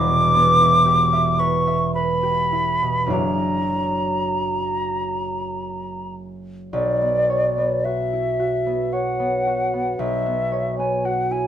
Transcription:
0.00 3.15 E1 medium
0.00 3.16 E2 medium
0.00 0.59 E4 medium
0.00 0.85 G4 medium
0.00 1.41 D6 loud
0.07 2.81 B2 medium
0.34 3.16 B3 medium
0.61 2.51 E4 medium
0.86 2.22 G4 medium
1.13 1.66 E5 medium
1.39 1.94 B4 medium
1.39 1.94 C#6 medium
1.67 5.57 E5 medium
1.95 3.17 B4 medium
1.95 3.14 B5 medium
2.23 3.16 G4 soft
2.52 3.07 E4 soft
2.82 3.17 B2 soft
3.06 6.77 F#1 medium
3.06 6.75 F#2 medium
3.06 6.97 D4 soft
3.06 6.76 E4 soft
3.06 7.00 F#4 soft
3.11 7.01 D5 soft
3.11 6.14 A#5 medium
6.73 9.98 B1 medium
6.73 7.86 D5 medium
7.01 7.57 B3 soft
7.30 8.91 C#5 soft
7.58 8.65 B3 soft
7.85 8.38 F#4 soft
7.85 8.94 E5 medium
8.13 8.59 E4 soft
8.40 9.46 F#4 soft
8.67 9.18 B3 soft
8.93 10.51 C#5 soft
8.93 10.01 F#5 medium
9.19 9.72 B3 soft
9.47 11.04 F#4 soft
9.74 10.25 B3 soft
9.99 11.47 B1 medium
9.99 10.78 E5 medium
10.26 10.78 B3 soft
10.52 11.47 C#5 soft
10.78 11.47 B3 soft
10.78 11.07 G#5 medium
11.05 11.47 F#4 soft
11.05 11.33 F#5 medium
11.31 11.47 E4 soft
11.31 11.47 G#5 medium

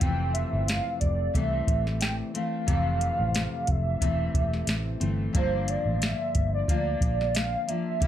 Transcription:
0.00 0.43 F1 medium
0.00 1.34 F2 medium
0.00 1.32 C3 medium
0.00 1.33 E3 medium
0.00 1.34 A3 medium
0.00 1.35 C4 medium
0.00 0.33 G5 loud
0.00 kick medium
0.00 closed hi-hat medium
0.34 0.68 E5 medium
0.34 closed hi-hat medium
0.53 0.80 G1 medium
0.67 1.00 F5 loud
0.67 snare loud
0.67 closed hi-hat medium
1.00 1.28 F1 medium
1.00 1.36 D5 medium
1.00 kick medium
1.00 closed hi-hat medium
1.34 1.61 C2 medium
1.34 2.34 C3 medium
1.34 2.35 E3 medium
1.34 2.34 A3 medium
1.34 2.33 C4 medium
1.34 2.01 E5 loud
1.34 kick medium
1.34 closed hi-hat medium
1.67 2.21 A1 medium
1.67 kick medium
1.67 closed hi-hat medium
1.87 snare soft
2.01 2.16 G5 medium
2.01 snare loud
2.01 closed hi-hat medium
2.34 2.67 E3 soft
2.34 2.68 A3 medium
2.34 2.68 C4 soft
2.34 3.72 F5 medium
2.34 closed hi-hat medium
2.67 3.09 F1 loud
2.67 4.01 F2 medium
2.67 4.00 C3 medium
2.67 4.01 E3 medium
2.67 4.01 A3 medium
2.67 4.02 C4 medium
2.67 kick medium
2.67 closed hi-hat medium
3.01 closed hi-hat medium
3.20 3.46 A1 medium
3.35 snare medium
3.35 closed hi-hat medium
3.67 3.95 F1 loud
3.67 5.02 E5 medium
3.67 kick medium
3.67 closed hi-hat medium
4.01 4.28 E1 medium
4.01 5.01 C3 medium
4.01 5.01 E3 medium
4.01 5.00 A3 medium
4.01 4.99 C4 medium
4.01 kick medium
4.01 closed hi-hat loud
4.34 4.61 E1 medium
4.34 kick medium
4.34 closed hi-hat medium
4.54 snare soft
4.67 4.94 A1 medium
4.67 snare medium
4.67 closed hi-hat medium
5.00 5.28 G1 medium
5.00 5.35 E3 soft
5.00 5.35 A3 medium
5.00 5.34 C4 soft
5.00 closed hi-hat medium
5.33 5.76 G1 loud
5.33 6.67 G2 medium
5.33 6.67 D3 medium
5.33 6.68 F3 medium
5.33 6.69 A#3 medium
5.33 6.69 D4 medium
5.33 kick loud
5.33 closed hi-hat medium
5.37 5.71 C5 loud
5.68 6.02 D5 medium
5.68 closed hi-hat medium
5.85 6.13 A1 medium
6.02 6.51 E5 loud
6.02 snare medium
6.02 closed hi-hat medium
6.35 6.62 G1 loud
6.35 kick medium
6.35 closed hi-hat medium
6.54 6.68 D5 medium
6.68 6.95 D2 medium
6.68 7.68 D3 soft
6.68 7.69 F3 medium
6.68 7.68 A#3 medium
6.68 7.66 D4 medium
6.68 7.37 D5 loud
6.68 kick medium
6.68 closed hi-hat medium
7.01 7.55 A#1 medium
7.01 kick medium
7.01 closed hi-hat medium
7.21 snare soft
7.35 7.69 F5 medium
7.35 snare medium
7.35 closed hi-hat medium
7.68 8.01 F3 soft
7.68 8.01 A#3 soft
7.68 8.01 D4 soft
7.68 8.07 E5 loud
7.68 closed hi-hat medium
8.00 8.07 C2 medium
8.00 8.07 C3 medium
8.00 8.07 G3 medium
8.00 8.07 A#3 medium
8.00 8.07 E4 medium
8.00 kick medium
8.00 closed hi-hat medium

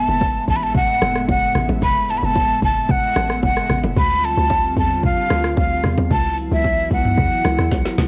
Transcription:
0.00 3.93 A2 medium
0.00 3.93 G#3 medium
0.00 3.92 B3 medium
0.00 3.93 E5 medium
0.00 0.45 A5 loud
0.09 0.47 F#1 loud
0.09 shaker soft
0.21 kick medium
0.21 high bongo medium
0.21 shaker medium
0.36 shaker soft
0.48 0.88 A1 loud
0.48 0.58 A5 loud
0.48 kick loud
0.48 open hi-hat medium
0.48 shaker loud
0.56 0.65 B5 medium
0.62 0.76 A5 loud
0.62 shaker medium
0.75 1.26 F#5 loud
0.75 kick loud
0.75 low conga medium
0.75 shaker medium
0.89 shaker medium
1.02 1.28 F#1 medium
1.02 cross-stick loud
1.02 open hi-hat medium
1.02 low bongo medium
1.02 shaker medium
1.15 cross-stick loud
1.15 shaker medium
1.28 1.55 F#1 loud
1.28 1.67 F#5 loud
1.28 kick loud
1.28 high bongo medium
1.28 shaker medium
1.42 shaker medium
1.55 1.69 A1 medium
1.55 cross-stick medium
1.55 open hi-hat medium
1.55 low conga medium
1.55 shaker medium
1.69 1.84 A1 loud
1.69 low bongo medium
1.69 shaker medium
1.82 2.22 F#1 loud
1.82 2.12 B5 loud
1.82 kick loud
1.82 low conga medium
1.82 shaker medium
1.96 shaker medium
2.09 2.19 A5 loud
2.09 open hi-hat medium
2.09 shaker loud
2.18 2.26 B5 medium
2.23 2.61 F#1 loud
2.23 2.63 A5 loud
2.23 shaker soft
2.36 kick medium
2.36 high bongo medium
2.36 shaker medium
2.50 shaker soft
2.62 3.02 F#1 loud
2.62 2.92 A5 loud
2.62 kick loud
2.62 open hi-hat medium
2.62 shaker loud
2.76 shaker medium
2.89 3.44 F#5 loud
2.89 kick loud
2.89 low conga medium
2.89 shaker medium
3.03 shaker medium
3.16 3.42 A1 medium
3.16 cross-stick loud
3.16 open hi-hat medium
3.16 low bongo medium
3.16 shaker medium
3.30 cross-stick loud
3.30 shaker medium
3.42 3.69 F#1 loud
3.42 3.82 F#5 medium
3.42 kick loud
3.42 high bongo medium
3.42 shaker medium
3.57 cross-stick loud
3.57 shaker medium
3.69 3.83 A1 medium
3.69 cross-stick loud
3.69 open hi-hat medium
3.69 low conga medium
3.69 shaker medium
3.83 3.96 F#1 medium
3.83 low bongo medium
3.83 shaker medium
3.96 4.36 D2 loud
3.96 6.09 D3 medium
3.96 6.09 G3 medium
3.96 6.09 C4 medium
3.96 6.09 F4 medium
3.96 4.26 B5 loud
3.96 kick loud
3.96 low conga medium
3.96 shaker medium
4.11 shaker medium
4.23 4.78 A5 loud
4.23 open hi-hat medium
4.23 shaker loud
4.37 4.76 D2 loud
4.37 shaker soft
4.50 kick medium
4.50 high bongo medium
4.50 shaker medium
4.64 shaker soft
4.77 5.16 E2 medium
4.77 5.03 A5 loud
4.77 kick loud
4.77 open hi-hat medium
4.77 shaker loud
4.91 shaker medium
5.03 5.54 F5 loud
5.03 kick loud
5.03 low conga medium
5.03 shaker medium
5.17 shaker medium
5.30 5.56 D2 medium
5.30 cross-stick loud
5.30 open hi-hat medium
5.30 low bongo medium
5.30 shaker medium
5.44 cross-stick loud
5.44 shaker medium
5.57 5.83 D2 loud
5.57 5.96 F5 medium
5.57 kick loud
5.57 high bongo medium
5.57 shaker medium
5.71 shaker medium
5.83 5.97 E2 medium
5.83 cross-stick medium
5.83 open hi-hat medium
5.83 low conga medium
5.83 shaker medium
5.98 6.10 E2 medium
5.98 low bongo medium
5.98 shaker medium
6.11 6.50 C#2 loud
6.11 8.08 E3 medium
6.11 8.08 F#3 medium
6.11 8.08 B3 medium
6.11 8.08 E4 medium
6.11 6.36 A5 loud
6.11 kick loud
6.11 low conga medium
6.11 shaker medium
6.25 shaker medium
6.38 open hi-hat medium
6.38 shaker medium
6.51 6.90 C#2 loud
6.51 6.89 E5 medium
6.51 shaker soft
6.64 kick loud
6.64 high bongo medium
6.64 shaker medium
6.78 shaker soft
6.91 7.17 C#2 medium
6.91 7.95 F#5 loud
6.91 kick loud
6.91 open hi-hat medium
6.91 shaker loud
7.05 mid tom medium
7.05 shaker medium
7.18 7.31 E2 medium
7.18 kick loud
7.18 low conga medium
7.18 shaker medium
7.32 shaker medium
7.44 7.58 C#2 medium
7.44 cross-stick loud
7.44 open hi-hat medium
7.44 low bongo medium
7.44 shaker medium
7.58 7.71 E2 medium
7.58 cross-stick loud
7.58 shaker medium
7.71 7.85 C#2 medium
7.71 kick loud
7.71 snare medium
7.71 high bongo medium
7.71 shaker medium
7.85 snare medium
7.85 shaker medium
7.98 8.08 C#2 medium
7.98 snare loud
7.98 open hi-hat medium
7.98 low conga medium
7.98 shaker medium

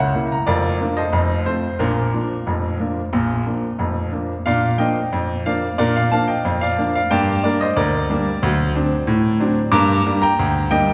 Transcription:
0.00 0.10 C#2 medium
0.00 0.10 C#3 medium
0.00 0.29 F#5 loud
0.15 0.33 C#3 soft
0.15 0.33 A#3 soft
0.15 0.34 E4 medium
0.32 0.48 A#5 medium
0.47 0.75 F1 medium
0.47 0.76 F2 medium
0.47 0.94 F4 medium
0.47 0.94 A#4 medium
0.47 0.87 D5 medium
0.81 0.99 F3 soft
0.81 1.00 A#3 soft
0.81 1.00 D4 medium
0.97 1.44 A4 medium
0.97 1.44 C5 medium
0.97 1.37 D#5 medium
1.12 1.41 F1 medium
1.12 1.42 F2 medium
1.46 1.65 F3 soft
1.46 1.66 A3 soft
1.46 1.66 C4 medium
1.46 1.78 C5 medium
1.79 2.09 A#1 medium
1.79 2.09 A#2 medium
1.79 2.13 D4 medium
1.79 4.10 F4 medium
1.79 4.09 A#4 medium
2.14 2.32 F3 soft
2.14 2.33 A#3 soft
2.14 2.33 D4 medium
2.47 2.75 F1 medium
2.47 2.76 F2 medium
2.80 2.99 F3 soft
2.80 2.99 A#3 soft
2.80 2.99 D4 soft
3.13 3.42 A#1 medium
3.13 3.42 A#2 medium
3.46 3.65 F3 soft
3.46 3.65 A#3 soft
3.46 3.65 D4 soft
3.79 4.08 F1 medium
3.79 4.08 F2 medium
4.12 4.31 F3 soft
4.12 4.32 A#3 soft
4.12 4.31 D4 soft
4.46 4.75 A#2 medium
4.46 4.66 D4 medium
4.46 4.78 D5 medium
4.46 4.78 F5 loud
4.78 4.97 F3 medium
4.78 4.98 A#3 medium
4.78 4.98 D4 medium
4.78 5.42 D#5 medium
4.78 5.42 G5 medium
5.13 5.41 F2 medium
5.46 5.64 F3 soft
5.46 5.65 A#3 medium
5.46 5.65 D4 soft
5.46 5.77 D5 medium
5.46 5.73 F5 medium
5.78 6.07 A#2 medium
5.78 5.98 D4 medium
5.78 5.95 A#4 medium
5.78 5.95 D5 loud
5.96 6.12 D5 medium
5.96 6.12 F5 medium
6.11 6.30 F3 soft
6.11 6.31 A#3 medium
6.11 6.31 D4 medium
6.11 6.28 F5 medium
6.11 6.28 A5 loud
6.28 6.59 D#5 medium
6.28 6.54 G5 medium
6.45 6.73 F2 medium
6.61 6.93 D5 medium
6.61 6.93 F5 medium
6.78 6.97 F3 medium
6.78 6.96 A#3 medium
6.78 6.97 D4 medium
6.95 7.10 D5 medium
6.95 7.11 F5 medium
7.11 7.39 G2 medium
7.11 7.30 A#3 medium
7.11 7.42 D5 medium
7.11 7.37 G5 loud
7.44 7.62 G3 medium
7.44 7.63 A#3 medium
7.44 7.63 D4 medium
7.44 7.60 A#4 medium
7.44 7.60 D5 medium
7.61 7.77 C5 medium
7.61 7.77 D#5 loud
7.76 8.04 D2 medium
7.76 9.70 A#4 medium
7.76 9.69 D5 loud
8.09 8.27 G3 medium
8.09 8.28 A#3 medium
8.09 8.28 D4 medium
8.43 8.70 D2 loud
8.43 8.62 F#3 medium
8.75 8.93 F#3 medium
8.75 8.93 C4 medium
8.75 8.93 D4 medium
9.07 9.35 A2 loud
9.40 9.58 F#3 medium
9.40 9.58 C4 medium
9.40 9.59 D4 medium
9.72 10.00 G2 loud
9.72 9.92 A#3 medium
9.72 10.18 A#5 loud
9.72 10.12 D6 loud
10.06 10.24 G3 medium
10.06 10.24 A#3 medium
10.06 10.25 D4 medium
10.22 10.68 G5 medium
10.22 10.61 A#5 loud
10.39 10.67 D2 medium
10.71 10.89 G3 medium
10.71 10.90 A#3 medium
10.71 10.90 D4 medium
10.71 10.93 D#5 medium
10.71 10.93 G5 loud

